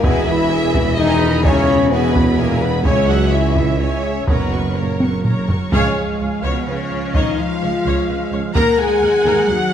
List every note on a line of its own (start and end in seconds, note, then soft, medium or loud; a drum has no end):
0.02 2.81 E1 medium
0.02 2.87 E1 medium
0.02 2.81 E2 medium
0.02 0.26 B2 medium
0.02 0.27 B3 loud
0.02 0.25 E4 medium
0.02 0.25 G#4 medium
0.02 0.27 B4 medium
0.02 0.25 E5 medium
0.02 0.25 G#5 medium
0.02 taiko medium
0.26 0.97 E3 medium
0.26 0.95 E4 medium
0.26 0.50 E4 medium
0.26 0.50 G#4 medium
0.26 0.50 B4 medium
0.26 0.97 E5 loud
0.26 0.51 B5 medium
0.50 0.73 E4 medium
0.50 0.73 G#4 medium
0.50 0.73 E5 medium
0.50 0.74 G#5 medium
0.74 0.96 E4 medium
0.74 0.96 G#4 medium
0.74 0.97 B4 medium
0.74 0.97 B5 medium
0.74 taiko medium
0.96 1.44 D#3 loud
0.96 1.44 D#4 loud
0.96 1.19 E4 medium
0.96 1.19 G#4 medium
0.96 1.44 D#5 loud
0.96 1.19 E5 medium
0.96 1.19 G#5 medium
1.20 1.43 E4 medium
1.20 1.43 G#4 medium
1.20 1.44 B4 medium
1.20 1.44 B5 medium
1.43 1.92 C#3 loud
1.43 1.92 C#4 loud
1.43 1.67 E4 medium
1.43 1.66 G#4 medium
1.43 1.90 C#5 medium
1.43 1.67 E5 medium
1.43 1.67 G#5 medium
1.43 taiko medium
1.67 1.90 E4 medium
1.67 1.90 G#4 medium
1.67 1.91 B4 medium
1.67 1.91 B5 medium
1.90 2.38 B2 medium
1.90 2.38 B3 loud
1.90 2.13 E4 medium
1.90 2.13 G#4 medium
1.90 2.37 B4 medium
1.90 2.13 E5 medium
1.90 2.12 G#5 medium
2.13 2.36 E4 medium
2.13 2.36 G#4 medium
2.13 2.37 B4 medium
2.13 2.37 B5 medium
2.13 taiko medium
2.37 2.61 A#2 medium
2.37 2.61 A#3 loud
2.37 2.60 E4 medium
2.37 2.61 G#4 medium
2.37 2.61 A#4 medium
2.37 2.61 E5 medium
2.37 2.61 G#5 medium
2.61 2.85 B2 medium
2.61 2.85 B3 medium
2.61 2.84 E4 medium
2.61 2.85 G#4 medium
2.61 2.85 B4 medium
2.61 2.85 B5 medium
2.84 4.27 C#2 medium
2.84 4.28 C#2 medium
2.84 4.11 C#2 medium
2.84 3.08 C#3 medium
2.84 3.09 C#4 loud
2.84 3.07 E4 medium
2.84 3.06 C#5 medium
2.84 3.08 C#5 medium
2.84 3.06 E5 medium
2.84 3.07 G#5 medium
2.84 taiko medium
3.08 3.32 F#3 medium
3.08 3.33 F#4 medium
3.08 3.32 G#4 medium
3.08 3.32 C#5 medium
3.08 3.32 E5 medium
3.08 3.31 F#5 medium
3.32 3.79 E3 medium
3.32 3.79 E4 medium
3.32 3.56 E4 medium
3.32 3.56 C#5 medium
3.32 3.79 E5 medium
3.32 3.54 E5 medium
3.32 3.56 G#5 medium
3.55 3.79 G#4 medium
3.55 3.79 C#5 medium
3.55 3.78 E5 medium
3.55 3.79 E5 medium
3.55 taiko medium
3.79 4.14 C#3 medium
3.79 4.28 C#4 medium
3.79 4.01 E4 soft
3.79 4.01 C#5 soft
3.79 4.27 C#5 medium
3.79 4.02 E5 medium
3.79 4.02 G#5 medium
4.03 4.27 G#4 soft
4.03 4.28 C#5 medium
4.03 4.27 E5 soft
4.03 4.28 E5 soft
4.27 5.49 F#1 soft
4.27 5.50 F#1 medium
4.27 5.49 F#2 soft
4.27 4.75 B2 medium
4.27 4.76 B3 medium
4.27 4.50 A#4 medium
4.27 4.74 B4 medium
4.27 4.50 C#5 soft
4.27 4.50 A#5 medium
4.27 taiko medium
4.51 4.76 F#4 soft
4.51 4.75 A#4 soft
4.51 4.76 C#5 soft
4.51 4.76 C#6 soft
4.75 5.25 A#2 medium
4.75 5.25 A#3 medium
4.75 5.24 A#4 medium
4.75 5.00 A#4 soft
4.75 5.00 C#5 soft
4.75 5.00 A#5 soft
5.00 5.24 F#4 soft
5.00 5.24 A#4 soft
5.00 5.24 C#5 soft
5.00 5.24 C#6 soft
5.00 taiko high medium
5.24 5.46 A#4 soft
5.24 5.47 A#4 soft
5.24 5.47 C#5 soft
5.24 5.46 A#5 soft
5.24 taiko low-mid medium
5.48 5.72 F#4 soft
5.48 5.72 A#4 soft
5.48 5.72 C#5 soft
5.48 5.72 C#6 soft
5.48 taiko low medium
5.71 5.94 C#2 medium
5.71 6.39 G#2 medium
5.71 8.51 F3 medium
5.71 6.39 G#3 medium
5.71 8.51 G#3 medium
5.71 6.39 G#4 medium
5.71 5.95 C#5 medium
5.71 8.52 F5 medium
5.71 taiko medium
6.19 6.27 C#2 soft
6.19 6.29 C#2 soft
6.19 6.28 C#5 soft
6.41 6.51 C#2 medium
6.41 6.53 C#2 medium
6.41 6.67 B2 medium
6.41 6.67 B3 medium
6.41 6.66 B4 medium
6.41 6.67 B4 medium
6.41 6.66 C#5 medium
6.65 6.74 C#2 soft
6.65 6.77 C#2 soft
6.65 7.13 C#3 medium
6.65 7.15 C#4 medium
6.65 6.76 B4 soft
6.65 7.12 C#5 medium
6.65 7.15 C#5 medium
6.90 6.98 C#2 soft
6.90 7.00 C#2 soft
6.90 6.99 C#5 soft
7.13 7.24 C#2 medium
7.13 7.23 C#2 medium
7.13 7.38 D#3 medium
7.13 7.38 D#4 medium
7.13 7.37 C#5 medium
7.13 7.37 D#5 medium
7.13 7.38 D#5 medium
7.13 taiko medium
7.38 8.32 F3 medium
7.38 8.33 F4 medium
7.38 8.31 F5 medium
7.38 8.30 F5 medium
7.61 7.71 C#2 medium
7.61 7.70 C#2 soft
7.61 7.71 C#5 soft
7.84 7.93 C#2 medium
7.84 8.07 C#5 medium
8.07 8.17 C#2 medium
8.07 8.17 B4 medium
8.32 8.41 C#2 medium
8.32 8.40 C#2 medium
8.32 8.41 C#5 medium
8.54 8.64 D#2 medium
8.54 9.73 D#3 medium
8.54 9.73 F#3 medium
8.54 8.77 A#3 medium
8.54 8.77 A#4 medium
8.54 8.77 A#4 loud
8.54 9.73 F#5 medium
8.54 8.76 A#5 medium
8.54 8.77 A#5 medium
8.54 taiko medium
8.78 9.47 G#3 medium
8.78 9.49 G#4 medium
8.78 9.48 G#5 medium
8.78 9.47 G#5 medium
9.00 9.10 D#2 soft
9.00 9.09 D#2 medium
9.00 9.10 A#4 medium
9.24 9.33 D#2 medium
9.24 9.34 D#2 medium
9.24 9.47 A#4 medium
9.48 9.57 D#2 medium
9.48 9.73 F#3 medium
9.48 9.73 F#4 medium
9.48 9.57 G#4 medium
9.48 9.73 F#5 medium